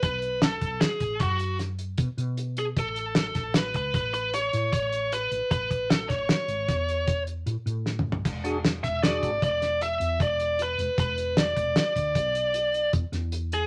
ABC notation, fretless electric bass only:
X:1
M:7/4
L:1/16
Q:1/4=153
K:A
V:1 name="Fretless electric bass" clef=bass
B,,,6 B,,,2 z2 A,,,2 F,,8 B,, z B,,6 | A,,,6 A,,,4 C,,2 A,,,6 A,,2 A,,,6 A,,, z | A,,,6 A,,,2 z2 G,,,2 E,,8 A,, z A,,6 | E,,,6 E,,,4 G,,,2 E,,,6 E,,2 E,,,6 E,,, z |
E,,,6 E,,,2 z2 D,,2 B,,,8 E,, z E,,6 |]